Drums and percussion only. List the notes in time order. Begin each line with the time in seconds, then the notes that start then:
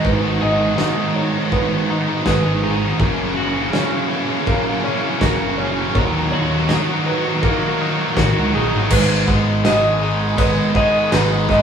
0.05 kick
0.78 snare
1.52 kick
2.26 kick, snare
3.00 kick
3.73 snare
4.47 kick
5.21 kick, snare
5.95 kick
6.69 snare
7.43 kick
8.17 kick, snare
8.90 kick, crash
9.28 kick
9.65 snare, crash
10.38 kick, crash
10.75 kick
11.12 snare, crash
11.49 kick, snare